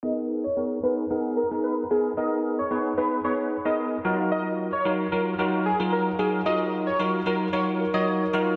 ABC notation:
X:1
M:4/4
L:1/16
Q:1/4=112
K:G#dor
V:1 name="Analog synth lead"
d z2 c2 z B z3 A z B z G z | d z2 c2 z B z c z2 d z4 | d z2 c2 z A z3 G z A z G z | d z2 c2 z A z c z2 d z4 |]
V:2 name="Soft synth lead"
z16 | z16 | z16 | z8 z2 A6 |]
V:3 name="Tine electric piano"
[B,DGA]3 z [B,DGA]2 [B,DGA]2 [B,DGA]2 z [B,DGA]2 z [B,DGA]2 | [B,DGA]3 z [B,DGB]2 [B,DGB]2 [B,DGB]2 z [B,DGA]2 z [F,DEFA]2- | [F,DEFA]3 z [F,DEFA]2 [F,DEFA]2 [F,DEFA]2 z [F,DEFA]2 z [F,DEFA]2 | [F,DEFA]3 z [F,DEFA]2 [F,DEFA]2 [F,DEFA]2 z [F,DEFc]2 z [F,DEFA]2 |]